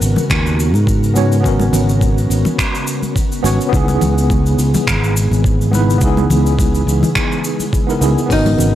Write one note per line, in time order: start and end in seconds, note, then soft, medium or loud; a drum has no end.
0.00 0.15 G#1 medium
0.00 3.69 C#3 medium
0.00 8.75 G#3 medium
0.00 1.11 B3 medium
0.00 8.26 B3 medium
0.00 1.12 C#4 medium
0.00 1.13 F#4 medium
0.00 3.69 F#4 medium
0.00 1.15 A#4 medium
0.00 3.69 A#4 medium
0.00 cabasa medium
0.16 high conga medium
0.16 low conga medium
0.16 cabasa medium
0.30 0.74 D#2 medium
0.30 finger snap medium
0.30 kick medium
0.30 cabasa medium
0.46 cabasa soft
0.60 cabasa medium
0.74 1.41 G#2 medium
0.74 high conga medium
0.74 cabasa soft
0.87 kick loud
0.87 cabasa medium
1.03 cabasa soft
1.14 1.39 B3 medium
1.14 1.41 C#4 medium
1.14 1.41 F#4 medium
1.14 1.42 C#5 loud
1.14 high conga medium
1.14 cabasa medium
1.32 cabasa soft
1.40 1.69 G#1 medium
1.40 3.39 B3 medium
1.40 3.41 C#4 medium
1.40 kick loud
1.45 3.42 F#4 medium
1.45 3.43 A#4 medium
1.45 cabasa medium
1.60 high conga medium
1.60 cabasa soft
1.73 2.27 G#1 medium
1.73 low conga medium
1.73 cabasa medium
1.89 cabasa soft
2.01 kick loud
2.01 high conga medium
2.01 cabasa medium
2.18 cabasa soft
2.30 2.43 G#1 medium
2.30 cabasa medium
2.45 high conga medium
2.45 low conga medium
2.45 cabasa soft
2.59 finger snap medium
2.59 kick medium
2.59 cabasa medium
2.75 cabasa soft
2.87 cabasa medium
3.03 high conga medium
3.03 cabasa soft
3.16 kick loud
3.16 cabasa medium
3.32 cabasa soft
3.42 3.57 G#1 medium
3.42 3.68 B3 medium
3.42 3.69 C#4 medium
3.42 3.70 F#4 medium
3.42 3.71 C#5 loud
3.42 high conga medium
3.42 cabasa medium
3.61 cabasa soft
3.69 3.97 C#2 medium
3.69 8.26 C#3 medium
3.69 8.26 E3 medium
3.69 5.68 B3 medium
3.69 5.69 D#4 medium
3.69 kick loud
3.74 5.70 E4 medium
3.74 5.72 G#4 loud
3.74 cabasa medium
3.88 high conga medium
3.88 cabasa soft
4.01 4.55 C#2 medium
4.01 low conga medium
4.01 cabasa medium
4.18 cabasa soft
4.30 kick loud
4.30 high conga medium
4.30 cabasa medium
4.46 cabasa soft
4.59 4.72 C#2 medium
4.59 cabasa medium
4.74 high conga loud
4.74 low conga medium
4.74 cabasa medium
4.87 5.28 G#1 medium
4.87 finger snap medium
4.87 kick medium
4.87 cabasa medium
5.04 cabasa soft
5.17 cabasa medium
5.31 5.98 G#1 medium
5.31 high conga medium
5.31 cabasa soft
5.44 kick loud
5.44 cabasa medium
5.61 cabasa soft
5.71 5.97 B3 medium
5.71 5.98 D#4 medium
5.71 5.99 E4 medium
5.71 5.99 B4 loud
5.71 high conga medium
5.71 cabasa medium
5.90 cabasa soft
5.98 6.26 C#2 medium
5.98 7.84 B3 medium
5.98 7.85 D#4 medium
5.98 kick loud
5.98 cabasa medium
6.03 7.86 E4 medium
6.03 7.87 G#4 medium
6.17 high conga loud
6.17 cabasa soft
6.30 6.84 C#2 medium
6.30 low conga medium
6.30 cabasa medium
6.46 cabasa soft
6.59 kick loud
6.59 high conga medium
6.59 cabasa soft
6.75 cabasa soft
6.87 7.00 C#2 medium
6.87 cabasa medium
7.03 high conga medium
7.03 low conga medium
7.03 cabasa soft
7.15 finger snap medium
7.15 kick medium
7.15 cabasa medium
7.32 cabasa soft
7.44 cabasa medium
7.60 high conga medium
7.60 cabasa soft
7.73 kick loud
7.73 cabasa medium
7.87 7.97 B3 medium
7.87 7.98 D#4 medium
7.87 7.99 E4 medium
7.87 7.99 A#4 medium
7.87 cabasa soft
8.00 8.15 C#2 medium
8.00 8.25 B3 medium
8.00 8.27 D#4 medium
8.00 8.27 E4 medium
8.00 8.28 G#4 medium
8.00 high conga medium
8.00 cabasa medium
8.18 cabasa soft
8.26 8.75 B3 medium
8.26 8.75 C#4 medium
8.26 8.75 A#4 medium
8.26 kick loud
8.26 open hi-hat medium
8.30 8.55 G#1 medium
8.30 8.75 C#3 medium
8.30 8.75 B3 medium
8.30 8.75 D#4 medium
8.30 8.75 F#4 loud
8.30 8.75 F#4 medium
8.30 8.75 A#4 medium
8.30 cabasa medium
8.46 open hi-hat medium
8.46 high conga medium
8.46 cabasa soft
8.59 8.75 G#1 medium
8.59 low conga medium
8.59 cabasa medium